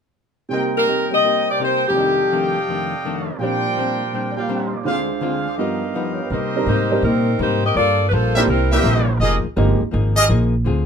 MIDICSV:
0, 0, Header, 1, 7, 480
1, 0, Start_track
1, 0, Key_signature, -3, "minor"
1, 0, Tempo, 362538
1, 666, Time_signature, 4, 2, 24, 8
1, 14377, End_track
2, 0, Start_track
2, 0, Title_t, "Trumpet section"
2, 0, Program_c, 0, 61
2, 666, Note_on_c, 0, 72, 54
2, 666, Note_on_c, 0, 79, 63
2, 669, Note_on_c, 0, 70, 59
2, 671, Note_on_c, 0, 75, 50
2, 2565, Note_off_c, 0, 79, 0
2, 2566, Note_off_c, 0, 75, 0
2, 2581, Note_on_c, 0, 79, 75
2, 2582, Note_on_c, 0, 74, 64
2, 2582, Note_on_c, 0, 75, 66
2, 2583, Note_on_c, 0, 77, 64
2, 2584, Note_on_c, 0, 69, 72
2, 2586, Note_off_c, 0, 72, 0
2, 2588, Note_off_c, 0, 70, 0
2, 4483, Note_off_c, 0, 79, 0
2, 4484, Note_off_c, 0, 74, 0
2, 4498, Note_on_c, 0, 70, 78
2, 4499, Note_on_c, 0, 79, 88
2, 4500, Note_on_c, 0, 74, 70
2, 4503, Note_on_c, 0, 72, 76
2, 4504, Note_off_c, 0, 75, 0
2, 4505, Note_off_c, 0, 69, 0
2, 4505, Note_off_c, 0, 77, 0
2, 5771, Note_off_c, 0, 74, 0
2, 5771, Note_off_c, 0, 79, 0
2, 5785, Note_on_c, 0, 77, 58
2, 5787, Note_on_c, 0, 74, 63
2, 5787, Note_on_c, 0, 79, 73
2, 6412, Note_off_c, 0, 72, 0
2, 6414, Note_off_c, 0, 74, 0
2, 6416, Note_off_c, 0, 77, 0
2, 6422, Note_off_c, 0, 70, 0
2, 6428, Note_off_c, 0, 79, 0
2, 6428, Note_on_c, 0, 72, 62
2, 6430, Note_on_c, 0, 74, 59
2, 6431, Note_on_c, 0, 68, 67
2, 6432, Note_on_c, 0, 77, 73
2, 6905, Note_on_c, 0, 79, 42
2, 7036, Note_on_c, 0, 80, 50
2, 7126, Note_off_c, 0, 79, 0
2, 7153, Note_on_c, 0, 84, 48
2, 7234, Note_off_c, 0, 80, 0
2, 7270, Note_on_c, 0, 86, 53
2, 7299, Note_off_c, 0, 84, 0
2, 7368, Note_off_c, 0, 77, 0
2, 7381, Note_on_c, 0, 67, 67
2, 7381, Note_on_c, 0, 75, 64
2, 7384, Note_on_c, 0, 77, 78
2, 7387, Note_off_c, 0, 72, 0
2, 7388, Note_off_c, 0, 68, 0
2, 7388, Note_off_c, 0, 74, 0
2, 7435, Note_off_c, 0, 86, 0
2, 7866, Note_on_c, 0, 82, 52
2, 8110, Note_on_c, 0, 79, 42
2, 8236, Note_off_c, 0, 82, 0
2, 8329, Note_off_c, 0, 75, 0
2, 8331, Note_off_c, 0, 67, 0
2, 8341, Note_on_c, 0, 70, 77
2, 8344, Note_off_c, 0, 77, 0
2, 8345, Note_on_c, 0, 75, 91
2, 8347, Note_on_c, 0, 67, 87
2, 8348, Note_on_c, 0, 72, 80
2, 8443, Note_off_c, 0, 79, 0
2, 9684, Note_off_c, 0, 70, 0
2, 9686, Note_off_c, 0, 75, 0
2, 9687, Note_off_c, 0, 67, 0
2, 9688, Note_off_c, 0, 72, 0
2, 11057, Note_on_c, 0, 67, 86
2, 11061, Note_on_c, 0, 70, 86
2, 11061, Note_on_c, 0, 72, 83
2, 11062, Note_on_c, 0, 76, 93
2, 11169, Note_off_c, 0, 67, 0
2, 11172, Note_off_c, 0, 70, 0
2, 11172, Note_off_c, 0, 72, 0
2, 11172, Note_off_c, 0, 76, 0
2, 11542, Note_on_c, 0, 67, 91
2, 11542, Note_on_c, 0, 70, 83
2, 11544, Note_on_c, 0, 76, 95
2, 11545, Note_on_c, 0, 72, 82
2, 12152, Note_off_c, 0, 67, 0
2, 12153, Note_off_c, 0, 70, 0
2, 12153, Note_off_c, 0, 76, 0
2, 12154, Note_off_c, 0, 72, 0
2, 12187, Note_on_c, 0, 68, 73
2, 12188, Note_on_c, 0, 75, 90
2, 12189, Note_on_c, 0, 67, 78
2, 12192, Note_on_c, 0, 70, 74
2, 12400, Note_off_c, 0, 68, 0
2, 12400, Note_off_c, 0, 75, 0
2, 12401, Note_off_c, 0, 67, 0
2, 12402, Note_off_c, 0, 70, 0
2, 13458, Note_on_c, 0, 68, 81
2, 13458, Note_on_c, 0, 70, 86
2, 13458, Note_on_c, 0, 75, 104
2, 13460, Note_on_c, 0, 67, 92
2, 13569, Note_off_c, 0, 70, 0
2, 13570, Note_off_c, 0, 68, 0
2, 13570, Note_off_c, 0, 75, 0
2, 13571, Note_off_c, 0, 67, 0
2, 14377, End_track
3, 0, Start_track
3, 0, Title_t, "Saxophone section"
3, 0, Program_c, 1, 65
3, 1017, Note_on_c, 1, 70, 86
3, 1448, Note_off_c, 1, 70, 0
3, 1512, Note_on_c, 1, 75, 86
3, 1936, Note_off_c, 1, 75, 0
3, 1991, Note_on_c, 1, 74, 86
3, 2131, Note_off_c, 1, 74, 0
3, 2177, Note_on_c, 1, 72, 81
3, 2458, Note_off_c, 1, 72, 0
3, 2473, Note_on_c, 1, 67, 82
3, 3834, Note_off_c, 1, 67, 0
3, 8850, Note_on_c, 1, 63, 73
3, 8850, Note_on_c, 1, 72, 81
3, 8853, Note_on_c, 1, 67, 74
3, 8855, Note_on_c, 1, 58, 74
3, 9285, Note_off_c, 1, 63, 0
3, 9285, Note_off_c, 1, 72, 0
3, 9286, Note_off_c, 1, 67, 0
3, 9288, Note_off_c, 1, 58, 0
3, 9327, Note_on_c, 1, 60, 74
3, 9330, Note_on_c, 1, 63, 75
3, 9331, Note_on_c, 1, 55, 71
3, 9333, Note_on_c, 1, 70, 91
3, 9796, Note_off_c, 1, 60, 0
3, 9797, Note_off_c, 1, 63, 0
3, 9798, Note_off_c, 1, 55, 0
3, 9799, Note_off_c, 1, 70, 0
3, 9810, Note_on_c, 1, 67, 80
3, 9811, Note_on_c, 1, 63, 81
3, 9813, Note_on_c, 1, 58, 74
3, 9813, Note_on_c, 1, 72, 93
3, 10092, Note_off_c, 1, 67, 0
3, 10093, Note_off_c, 1, 63, 0
3, 10094, Note_off_c, 1, 58, 0
3, 10094, Note_off_c, 1, 72, 0
3, 10126, Note_on_c, 1, 67, 81
3, 10126, Note_on_c, 1, 70, 81
3, 10129, Note_on_c, 1, 75, 95
3, 10133, Note_on_c, 1, 60, 77
3, 10266, Note_off_c, 1, 67, 0
3, 10267, Note_off_c, 1, 70, 0
3, 10268, Note_off_c, 1, 75, 0
3, 10271, Note_off_c, 1, 60, 0
3, 10288, Note_on_c, 1, 69, 97
3, 10291, Note_on_c, 1, 58, 89
3, 10291, Note_on_c, 1, 74, 110
3, 10294, Note_on_c, 1, 65, 93
3, 10664, Note_off_c, 1, 69, 0
3, 10666, Note_off_c, 1, 58, 0
3, 10666, Note_off_c, 1, 74, 0
3, 10668, Note_off_c, 1, 65, 0
3, 10710, Note_on_c, 1, 71, 66
3, 10759, Note_off_c, 1, 71, 0
3, 10768, Note_on_c, 1, 65, 80
3, 10770, Note_on_c, 1, 58, 79
3, 10773, Note_on_c, 1, 72, 89
3, 10775, Note_on_c, 1, 69, 79
3, 11236, Note_off_c, 1, 65, 0
3, 11237, Note_off_c, 1, 58, 0
3, 11239, Note_off_c, 1, 72, 0
3, 11240, Note_off_c, 1, 69, 0
3, 11247, Note_on_c, 1, 70, 82
3, 11251, Note_on_c, 1, 55, 72
3, 11254, Note_on_c, 1, 64, 71
3, 11256, Note_on_c, 1, 60, 70
3, 11531, Note_off_c, 1, 70, 0
3, 11533, Note_off_c, 1, 55, 0
3, 11534, Note_off_c, 1, 64, 0
3, 11535, Note_off_c, 1, 60, 0
3, 11568, Note_on_c, 1, 60, 63
3, 11570, Note_on_c, 1, 58, 64
3, 11573, Note_on_c, 1, 52, 60
3, 11573, Note_on_c, 1, 67, 76
3, 12001, Note_off_c, 1, 60, 0
3, 12002, Note_off_c, 1, 58, 0
3, 12004, Note_off_c, 1, 52, 0
3, 12004, Note_off_c, 1, 67, 0
3, 14377, End_track
4, 0, Start_track
4, 0, Title_t, "Upright piano"
4, 0, Program_c, 2, 0
4, 646, Note_on_c, 2, 48, 50
4, 667, Note_on_c, 2, 55, 45
4, 681, Note_on_c, 2, 58, 44
4, 694, Note_on_c, 2, 63, 45
4, 713, Note_on_c, 2, 70, 52
4, 1437, Note_off_c, 2, 55, 0
4, 1457, Note_on_c, 2, 55, 39
4, 1471, Note_on_c, 2, 60, 35
4, 1493, Note_on_c, 2, 67, 43
4, 2514, Note_on_c, 2, 41, 47
4, 2527, Note_off_c, 2, 48, 0
4, 2547, Note_on_c, 2, 48, 41
4, 2549, Note_off_c, 2, 55, 0
4, 2568, Note_on_c, 2, 55, 43
4, 2591, Note_off_c, 2, 60, 0
4, 2594, Note_off_c, 2, 58, 0
4, 2600, Note_off_c, 2, 63, 0
4, 2602, Note_off_c, 2, 67, 0
4, 2602, Note_on_c, 2, 74, 39
4, 2609, Note_off_c, 2, 70, 0
4, 2631, Note_on_c, 2, 63, 42
4, 2666, Note_on_c, 2, 69, 46
4, 4470, Note_off_c, 2, 41, 0
4, 4477, Note_on_c, 2, 46, 50
4, 4486, Note_off_c, 2, 48, 0
4, 4490, Note_off_c, 2, 55, 0
4, 4499, Note_on_c, 2, 53, 44
4, 4510, Note_on_c, 2, 55, 43
4, 4514, Note_off_c, 2, 74, 0
4, 4528, Note_off_c, 2, 63, 0
4, 4534, Note_on_c, 2, 62, 46
4, 4544, Note_on_c, 2, 72, 55
4, 4546, Note_off_c, 2, 69, 0
4, 5712, Note_on_c, 2, 74, 41
4, 5749, Note_off_c, 2, 55, 0
4, 5769, Note_on_c, 2, 55, 40
4, 5787, Note_on_c, 2, 58, 37
4, 5788, Note_off_c, 2, 74, 0
4, 5802, Note_on_c, 2, 65, 37
4, 5808, Note_on_c, 2, 74, 42
4, 5834, Note_on_c, 2, 77, 44
4, 5953, Note_on_c, 2, 79, 46
4, 5998, Note_off_c, 2, 77, 0
4, 6064, Note_on_c, 2, 82, 43
4, 6170, Note_off_c, 2, 79, 0
4, 6181, Note_on_c, 2, 84, 46
4, 6267, Note_off_c, 2, 82, 0
4, 6308, Note_on_c, 2, 86, 51
4, 6333, Note_off_c, 2, 84, 0
4, 6408, Note_off_c, 2, 65, 0
4, 6411, Note_off_c, 2, 46, 0
4, 6414, Note_off_c, 2, 72, 0
4, 6416, Note_on_c, 2, 50, 43
4, 6417, Note_on_c, 2, 38, 45
4, 6419, Note_off_c, 2, 55, 0
4, 6422, Note_off_c, 2, 53, 0
4, 6426, Note_on_c, 2, 56, 44
4, 6428, Note_off_c, 2, 58, 0
4, 6428, Note_on_c, 2, 65, 46
4, 6434, Note_on_c, 2, 72, 52
4, 6438, Note_off_c, 2, 74, 0
4, 6440, Note_off_c, 2, 62, 0
4, 6474, Note_off_c, 2, 86, 0
4, 7378, Note_off_c, 2, 65, 0
4, 7381, Note_off_c, 2, 38, 0
4, 7381, Note_off_c, 2, 50, 0
4, 7386, Note_off_c, 2, 56, 0
4, 7386, Note_on_c, 2, 43, 43
4, 7390, Note_off_c, 2, 72, 0
4, 7391, Note_on_c, 2, 55, 42
4, 7393, Note_on_c, 2, 59, 37
4, 7398, Note_on_c, 2, 65, 42
4, 7399, Note_on_c, 2, 63, 39
4, 7406, Note_on_c, 2, 70, 46
4, 7889, Note_on_c, 2, 77, 42
4, 8002, Note_on_c, 2, 75, 38
4, 8098, Note_off_c, 2, 77, 0
4, 8123, Note_on_c, 2, 73, 44
4, 8197, Note_off_c, 2, 75, 0
4, 8240, Note_on_c, 2, 71, 42
4, 8265, Note_off_c, 2, 73, 0
4, 8346, Note_off_c, 2, 43, 0
4, 8348, Note_off_c, 2, 55, 0
4, 8349, Note_off_c, 2, 59, 0
4, 8351, Note_off_c, 2, 65, 0
4, 8352, Note_off_c, 2, 63, 0
4, 8355, Note_off_c, 2, 70, 0
4, 8401, Note_off_c, 2, 71, 0
4, 8681, Note_on_c, 2, 55, 63
4, 8682, Note_on_c, 2, 60, 60
4, 8683, Note_on_c, 2, 62, 57
4, 8688, Note_on_c, 2, 63, 56
4, 8696, Note_on_c, 2, 70, 68
4, 8818, Note_off_c, 2, 55, 0
4, 8819, Note_off_c, 2, 60, 0
4, 8819, Note_off_c, 2, 62, 0
4, 8822, Note_off_c, 2, 63, 0
4, 8826, Note_off_c, 2, 70, 0
4, 9141, Note_on_c, 2, 55, 63
4, 9142, Note_on_c, 2, 60, 61
4, 9148, Note_on_c, 2, 62, 58
4, 9148, Note_on_c, 2, 63, 56
4, 9160, Note_on_c, 2, 70, 71
4, 9289, Note_off_c, 2, 55, 0
4, 9289, Note_off_c, 2, 60, 0
4, 9292, Note_off_c, 2, 62, 0
4, 9292, Note_off_c, 2, 63, 0
4, 9298, Note_off_c, 2, 70, 0
4, 11062, Note_on_c, 2, 60, 62
4, 11066, Note_on_c, 2, 58, 73
4, 11071, Note_on_c, 2, 62, 63
4, 11079, Note_on_c, 2, 64, 61
4, 11082, Note_on_c, 2, 67, 79
4, 11209, Note_off_c, 2, 60, 0
4, 11211, Note_off_c, 2, 58, 0
4, 11213, Note_off_c, 2, 62, 0
4, 11217, Note_off_c, 2, 64, 0
4, 11219, Note_off_c, 2, 67, 0
4, 11543, Note_on_c, 2, 58, 58
4, 11549, Note_on_c, 2, 60, 53
4, 11549, Note_on_c, 2, 62, 50
4, 11551, Note_on_c, 2, 64, 55
4, 11559, Note_on_c, 2, 70, 67
4, 11689, Note_off_c, 2, 58, 0
4, 11692, Note_off_c, 2, 60, 0
4, 11692, Note_off_c, 2, 62, 0
4, 11693, Note_off_c, 2, 64, 0
4, 11697, Note_off_c, 2, 70, 0
4, 12663, Note_on_c, 2, 56, 53
4, 12672, Note_on_c, 2, 60, 46
4, 12675, Note_on_c, 2, 58, 47
4, 12680, Note_on_c, 2, 67, 63
4, 12685, Note_on_c, 2, 63, 50
4, 12948, Note_off_c, 2, 56, 0
4, 12953, Note_off_c, 2, 60, 0
4, 12954, Note_off_c, 2, 58, 0
4, 12957, Note_off_c, 2, 67, 0
4, 12959, Note_off_c, 2, 63, 0
4, 14377, End_track
5, 0, Start_track
5, 0, Title_t, "Hollow-body jazz guitar"
5, 0, Program_c, 3, 26
5, 672, Note_on_c, 3, 48, 43
5, 685, Note_on_c, 3, 58, 47
5, 699, Note_on_c, 3, 63, 53
5, 708, Note_on_c, 3, 67, 55
5, 1002, Note_off_c, 3, 48, 0
5, 1008, Note_off_c, 3, 58, 0
5, 1015, Note_off_c, 3, 63, 0
5, 1020, Note_off_c, 3, 67, 0
5, 1151, Note_on_c, 3, 48, 50
5, 1168, Note_on_c, 3, 58, 57
5, 1174, Note_on_c, 3, 63, 60
5, 1177, Note_on_c, 3, 67, 65
5, 1481, Note_off_c, 3, 48, 0
5, 1490, Note_off_c, 3, 58, 0
5, 1493, Note_off_c, 3, 63, 0
5, 1494, Note_off_c, 3, 67, 0
5, 1627, Note_on_c, 3, 48, 43
5, 1648, Note_on_c, 3, 58, 47
5, 1656, Note_on_c, 3, 63, 43
5, 1670, Note_on_c, 3, 67, 46
5, 1959, Note_off_c, 3, 48, 0
5, 1970, Note_off_c, 3, 58, 0
5, 1974, Note_off_c, 3, 63, 0
5, 1981, Note_off_c, 3, 67, 0
5, 2110, Note_on_c, 3, 48, 56
5, 2121, Note_on_c, 3, 58, 56
5, 2132, Note_on_c, 3, 63, 58
5, 2141, Note_on_c, 3, 67, 57
5, 2441, Note_off_c, 3, 48, 0
5, 2446, Note_off_c, 3, 58, 0
5, 2452, Note_off_c, 3, 63, 0
5, 2456, Note_off_c, 3, 67, 0
5, 2592, Note_on_c, 3, 41, 44
5, 2606, Note_on_c, 3, 51, 49
5, 2608, Note_on_c, 3, 57, 47
5, 2631, Note_on_c, 3, 62, 49
5, 2922, Note_off_c, 3, 41, 0
5, 2929, Note_off_c, 3, 51, 0
5, 2930, Note_off_c, 3, 57, 0
5, 2941, Note_off_c, 3, 62, 0
5, 3072, Note_on_c, 3, 41, 65
5, 3079, Note_on_c, 3, 51, 62
5, 3088, Note_on_c, 3, 57, 65
5, 3088, Note_on_c, 3, 62, 67
5, 3402, Note_off_c, 3, 41, 0
5, 3405, Note_off_c, 3, 51, 0
5, 3409, Note_off_c, 3, 57, 0
5, 3410, Note_off_c, 3, 62, 0
5, 3549, Note_on_c, 3, 41, 47
5, 3569, Note_on_c, 3, 51, 51
5, 3580, Note_on_c, 3, 57, 52
5, 3586, Note_on_c, 3, 62, 51
5, 3880, Note_off_c, 3, 41, 0
5, 3890, Note_off_c, 3, 51, 0
5, 3896, Note_off_c, 3, 57, 0
5, 3899, Note_off_c, 3, 62, 0
5, 4033, Note_on_c, 3, 41, 62
5, 4043, Note_on_c, 3, 51, 64
5, 4052, Note_on_c, 3, 57, 64
5, 4058, Note_on_c, 3, 62, 64
5, 4362, Note_off_c, 3, 41, 0
5, 4367, Note_off_c, 3, 51, 0
5, 4371, Note_off_c, 3, 57, 0
5, 4375, Note_off_c, 3, 62, 0
5, 4513, Note_on_c, 3, 46, 51
5, 4527, Note_on_c, 3, 55, 52
5, 4541, Note_on_c, 3, 60, 52
5, 4550, Note_on_c, 3, 62, 52
5, 4842, Note_off_c, 3, 46, 0
5, 4849, Note_off_c, 3, 55, 0
5, 4856, Note_off_c, 3, 60, 0
5, 4861, Note_off_c, 3, 62, 0
5, 4995, Note_on_c, 3, 46, 66
5, 5000, Note_on_c, 3, 55, 66
5, 5012, Note_on_c, 3, 60, 68
5, 5017, Note_on_c, 3, 62, 72
5, 5323, Note_off_c, 3, 46, 0
5, 5325, Note_off_c, 3, 55, 0
5, 5331, Note_off_c, 3, 60, 0
5, 5334, Note_off_c, 3, 62, 0
5, 5467, Note_on_c, 3, 46, 45
5, 5483, Note_on_c, 3, 55, 49
5, 5492, Note_on_c, 3, 60, 54
5, 5506, Note_on_c, 3, 62, 54
5, 5799, Note_off_c, 3, 46, 0
5, 5807, Note_off_c, 3, 55, 0
5, 5811, Note_off_c, 3, 60, 0
5, 5818, Note_off_c, 3, 62, 0
5, 5939, Note_on_c, 3, 46, 60
5, 5944, Note_on_c, 3, 55, 69
5, 5951, Note_on_c, 3, 60, 65
5, 5963, Note_on_c, 3, 62, 66
5, 6275, Note_off_c, 3, 46, 0
5, 6277, Note_off_c, 3, 55, 0
5, 6281, Note_off_c, 3, 60, 0
5, 6287, Note_off_c, 3, 62, 0
5, 6426, Note_on_c, 3, 50, 53
5, 6438, Note_on_c, 3, 56, 49
5, 6445, Note_on_c, 3, 60, 53
5, 6464, Note_on_c, 3, 65, 58
5, 6758, Note_off_c, 3, 50, 0
5, 6764, Note_off_c, 3, 56, 0
5, 6768, Note_off_c, 3, 60, 0
5, 6777, Note_off_c, 3, 65, 0
5, 6897, Note_on_c, 3, 50, 69
5, 6909, Note_on_c, 3, 56, 64
5, 6916, Note_on_c, 3, 60, 69
5, 6926, Note_on_c, 3, 65, 76
5, 7234, Note_off_c, 3, 50, 0
5, 7240, Note_off_c, 3, 56, 0
5, 7243, Note_off_c, 3, 60, 0
5, 7248, Note_off_c, 3, 65, 0
5, 7384, Note_on_c, 3, 43, 47
5, 7399, Note_on_c, 3, 53, 48
5, 7411, Note_on_c, 3, 59, 56
5, 7426, Note_on_c, 3, 63, 52
5, 7717, Note_off_c, 3, 43, 0
5, 7724, Note_off_c, 3, 53, 0
5, 7731, Note_off_c, 3, 59, 0
5, 7738, Note_off_c, 3, 63, 0
5, 7866, Note_on_c, 3, 43, 59
5, 7884, Note_on_c, 3, 59, 65
5, 7885, Note_on_c, 3, 53, 63
5, 7891, Note_on_c, 3, 63, 70
5, 8198, Note_off_c, 3, 43, 0
5, 8207, Note_off_c, 3, 53, 0
5, 8207, Note_off_c, 3, 59, 0
5, 8211, Note_off_c, 3, 63, 0
5, 8352, Note_on_c, 3, 48, 48
5, 8362, Note_on_c, 3, 55, 54
5, 8381, Note_on_c, 3, 58, 60
5, 8388, Note_on_c, 3, 63, 55
5, 8681, Note_off_c, 3, 48, 0
5, 8686, Note_off_c, 3, 55, 0
5, 8695, Note_off_c, 3, 58, 0
5, 8699, Note_off_c, 3, 63, 0
5, 8834, Note_on_c, 3, 48, 57
5, 8846, Note_on_c, 3, 55, 60
5, 8850, Note_on_c, 3, 58, 67
5, 8860, Note_on_c, 3, 63, 61
5, 9162, Note_off_c, 3, 48, 0
5, 9168, Note_off_c, 3, 55, 0
5, 9170, Note_off_c, 3, 58, 0
5, 9175, Note_off_c, 3, 63, 0
5, 9314, Note_on_c, 3, 48, 44
5, 9333, Note_on_c, 3, 55, 44
5, 9343, Note_on_c, 3, 58, 45
5, 9347, Note_on_c, 3, 63, 47
5, 9642, Note_off_c, 3, 48, 0
5, 9651, Note_off_c, 3, 55, 0
5, 9656, Note_off_c, 3, 58, 0
5, 9658, Note_off_c, 3, 63, 0
5, 9795, Note_on_c, 3, 48, 58
5, 9796, Note_on_c, 3, 55, 60
5, 9808, Note_on_c, 3, 58, 68
5, 9815, Note_on_c, 3, 63, 63
5, 10122, Note_off_c, 3, 48, 0
5, 10123, Note_off_c, 3, 55, 0
5, 10128, Note_off_c, 3, 58, 0
5, 10132, Note_off_c, 3, 63, 0
5, 10250, Note_on_c, 3, 55, 48
5, 10267, Note_on_c, 3, 58, 46
5, 10283, Note_on_c, 3, 65, 48
5, 10288, Note_on_c, 3, 69, 53
5, 10590, Note_off_c, 3, 55, 0
5, 10598, Note_off_c, 3, 58, 0
5, 10606, Note_off_c, 3, 65, 0
5, 10608, Note_off_c, 3, 69, 0
5, 10748, Note_on_c, 3, 55, 61
5, 10755, Note_on_c, 3, 58, 59
5, 10766, Note_on_c, 3, 65, 62
5, 10767, Note_on_c, 3, 69, 69
5, 11079, Note_off_c, 3, 55, 0
5, 11082, Note_off_c, 3, 58, 0
5, 11088, Note_off_c, 3, 65, 0
5, 11088, Note_off_c, 3, 69, 0
5, 11229, Note_on_c, 3, 48, 45
5, 11244, Note_on_c, 3, 55, 44
5, 11255, Note_on_c, 3, 58, 50
5, 11260, Note_on_c, 3, 64, 50
5, 11559, Note_off_c, 3, 48, 0
5, 11567, Note_off_c, 3, 55, 0
5, 11572, Note_off_c, 3, 58, 0
5, 11575, Note_off_c, 3, 64, 0
5, 11704, Note_on_c, 3, 48, 55
5, 11704, Note_on_c, 3, 55, 64
5, 11714, Note_on_c, 3, 58, 60
5, 11721, Note_on_c, 3, 64, 69
5, 12037, Note_off_c, 3, 48, 0
5, 12037, Note_off_c, 3, 55, 0
5, 12042, Note_off_c, 3, 58, 0
5, 12045, Note_off_c, 3, 64, 0
5, 12181, Note_on_c, 3, 53, 56
5, 12199, Note_on_c, 3, 58, 55
5, 12205, Note_on_c, 3, 63, 59
5, 12220, Note_on_c, 3, 68, 62
5, 12515, Note_off_c, 3, 53, 0
5, 12524, Note_off_c, 3, 58, 0
5, 12527, Note_off_c, 3, 63, 0
5, 12534, Note_off_c, 3, 68, 0
5, 12664, Note_on_c, 3, 53, 67
5, 12669, Note_on_c, 3, 58, 75
5, 12681, Note_on_c, 3, 63, 79
5, 12689, Note_on_c, 3, 68, 69
5, 12997, Note_off_c, 3, 53, 0
5, 12999, Note_off_c, 3, 58, 0
5, 13005, Note_off_c, 3, 63, 0
5, 13009, Note_off_c, 3, 68, 0
5, 13125, Note_on_c, 3, 53, 56
5, 13141, Note_on_c, 3, 58, 53
5, 13147, Note_on_c, 3, 63, 54
5, 13155, Note_on_c, 3, 68, 56
5, 13467, Note_off_c, 3, 53, 0
5, 13475, Note_off_c, 3, 58, 0
5, 13478, Note_off_c, 3, 63, 0
5, 13482, Note_off_c, 3, 68, 0
5, 13618, Note_on_c, 3, 53, 63
5, 13627, Note_on_c, 3, 58, 70
5, 13636, Note_on_c, 3, 63, 72
5, 13638, Note_on_c, 3, 68, 76
5, 13953, Note_off_c, 3, 53, 0
5, 13958, Note_off_c, 3, 58, 0
5, 13963, Note_off_c, 3, 63, 0
5, 13964, Note_off_c, 3, 68, 0
5, 14095, Note_on_c, 3, 50, 52
5, 14108, Note_on_c, 3, 60, 55
5, 14119, Note_on_c, 3, 65, 61
5, 14130, Note_on_c, 3, 68, 64
5, 14377, Note_off_c, 3, 50, 0
5, 14377, Note_off_c, 3, 60, 0
5, 14377, Note_off_c, 3, 65, 0
5, 14377, Note_off_c, 3, 68, 0
5, 14377, End_track
6, 0, Start_track
6, 0, Title_t, "Upright bass"
6, 0, Program_c, 4, 32
6, 8345, Note_on_c, 4, 48, 70
6, 8810, Note_off_c, 4, 48, 0
6, 8821, Note_on_c, 4, 44, 76
6, 9288, Note_off_c, 4, 44, 0
6, 9300, Note_on_c, 4, 46, 77
6, 9768, Note_off_c, 4, 46, 0
6, 9783, Note_on_c, 4, 44, 81
6, 10249, Note_off_c, 4, 44, 0
6, 10264, Note_on_c, 4, 43, 74
6, 10730, Note_off_c, 4, 43, 0
6, 10742, Note_on_c, 4, 34, 84
6, 11209, Note_off_c, 4, 34, 0
6, 11219, Note_on_c, 4, 36, 81
6, 11687, Note_off_c, 4, 36, 0
6, 11699, Note_on_c, 4, 34, 91
6, 12167, Note_off_c, 4, 34, 0
6, 12175, Note_on_c, 4, 29, 74
6, 12473, Note_off_c, 4, 29, 0
6, 12667, Note_on_c, 4, 31, 87
6, 12960, Note_off_c, 4, 31, 0
6, 13155, Note_on_c, 4, 32, 82
6, 13615, Note_off_c, 4, 32, 0
6, 13631, Note_on_c, 4, 34, 86
6, 14094, Note_off_c, 4, 34, 0
6, 14113, Note_on_c, 4, 38, 78
6, 14377, Note_off_c, 4, 38, 0
6, 14377, End_track
7, 0, Start_track
7, 0, Title_t, "Muted upright bass strokes"
7, 12497, Note_on_c, 9, 29, 39
7, 12630, Note_off_c, 9, 29, 0
7, 12986, Note_on_c, 9, 29, 39
7, 13118, Note_off_c, 9, 29, 0
7, 14377, End_track
0, 0, End_of_file